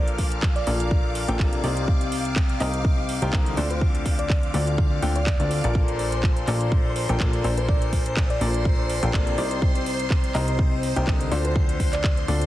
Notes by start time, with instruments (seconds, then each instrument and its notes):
Already playing: analog synth bass A#1, upright piano A#2 A#3 D4 F4 A4 C5, fm electric piano D5, string machine F5 D6
0.08 closed hi-hat
0.18 kick, open hi-hat
0.32 closed hi-hat
0.43 kick, clap
0.56 fm electric piano D5, closed hi-hat
0.67 analog synth bass A#1, upright piano A#2 A#3 D4 F4 A4 D5, open hi-hat
0.80 closed hi-hat
0.91 kick
1.15 open hi-hat
1.28 analog synth bass A#1, upright piano A#2 A#3 D4 F4 A4 G5, closed hi-hat
1.39 analog synth bass A#1, upright piano C3 A#3 D4 F4 A4 D5, kick, clap
1.53 closed hi-hat
1.64 analog synth bass C2, upright piano C3 C4 D#4 G4 A#4 D5, open hi-hat
1.77 closed hi-hat
1.88 kick
2.01 closed hi-hat
2.12 open hi-hat
2.25 closed hi-hat
2.36 kick, clap
2.49 closed hi-hat
2.60 analog synth bass C2, upright piano C3 C4 D#4 G4 A#4 D#5, clap, open hi-hat
2.74 closed hi-hat
2.85 kick
3.09 open hi-hat
3.22 analog synth bass C2, upright piano C3 C4 D#4 G4 A#4 G5, closed hi-hat
3.33 analog synth bass C2, upright piano D3 C4 D#4, kick, clap
3.46 closed hi-hat
3.57 analog synth bass D2, upright piano D3 C4 D4 F4 A4 C5, fm electric piano D5, open hi-hat
3.70 fm electric piano C5, closed hi-hat
3.81 kick
3.95 closed hi-hat
4.06 kick, open hi-hat
4.19 fm electric piano D5, closed hi-hat
4.30 kick, clap
4.43 closed hi-hat
4.54 analog synth bass D2, upright piano D3 C4 D4 F4 A4 D5, open hi-hat
4.67 closed hi-hat
4.78 kick
5.02 analog synth bass D2, upright piano D3 C4 D4 F4 A4 G5, open hi-hat
5.16 fm electric piano D5, closed hi-hat
5.27 kick, clap
5.40 analog synth bass D2, upright piano D3 C4 D4 F4 A4 D5, closed hi-hat
5.51 open hi-hat
5.64 analog synth bass A#1, upright piano A#2 A#3 D4 F4 A4 D5, closed hi-hat
5.75 string machine C5 C6, kick
5.88 closed hi-hat
5.99 open hi-hat
6.12 closed hi-hat
6.23 kick, clap
6.37 closed hi-hat
6.48 analog synth bass A#1, upright piano A#2 A#3 D4 F4 A4 D5, clap, open hi-hat
6.61 closed hi-hat
6.72 kick
6.96 open hi-hat
7.09 analog synth bass A#1, upright piano A#2 A#3 D4 F4 A4 G5, closed hi-hat
7.20 analog synth bass A#1, upright piano A#2 A#3 D4 F4 D5, kick, clap
7.33 closed hi-hat
7.44 analog synth bass A#1, upright piano A#2 A#3 D4 F4 A4 C5, fm electric piano D5, open hi-hat
7.58 fm electric piano C5, closed hi-hat
7.68 fm electric piano D5, kick
7.82 closed hi-hat
7.93 kick, open hi-hat
8.06 closed hi-hat
8.17 kick, clap
8.30 fm electric piano D5, closed hi-hat
8.41 analog synth bass A#1, upright piano A#2 A#3 D4 F4 A4 D5, open hi-hat
8.54 closed hi-hat
8.65 kick
8.90 open hi-hat
9.03 analog synth bass A#1, upright piano A#2 A#3 D4 F4 A4 G5, closed hi-hat
9.14 analog synth bass A#1, upright piano C3 A#3 D4 A4 D5, kick, clap
9.27 closed hi-hat
9.38 analog synth bass C2, upright piano C3 C4 D#4 G4 A#4 D5, open hi-hat
9.51 closed hi-hat
9.62 kick
9.75 closed hi-hat
9.86 open hi-hat
10.00 closed hi-hat
10.10 kick, clap
10.24 closed hi-hat
10.35 analog synth bass C2, upright piano C3 C4 D#4 G4 A#4 D#5, clap, open hi-hat
10.48 closed hi-hat
10.59 kick
10.83 open hi-hat
10.96 analog synth bass C2, upright piano C3 C4 D#4 G4 A#4 G5, closed hi-hat
11.07 analog synth bass C2, upright piano D3 C4 D#4 G4 A#4 D#5, kick, clap
11.21 closed hi-hat
11.31 analog synth bass D2, upright piano D3 C4 D4 F4 A4 C5, fm electric piano D5, open hi-hat
11.45 fm electric piano C5, closed hi-hat
11.56 kick
11.69 closed hi-hat
11.80 kick, open hi-hat
11.93 fm electric piano D5, clap, closed hi-hat
12.04 kick, clap
12.17 closed hi-hat
12.28 analog synth bass D2, upright piano D3 C4 D4 F4 A4 D5, open hi-hat
12.41 closed hi-hat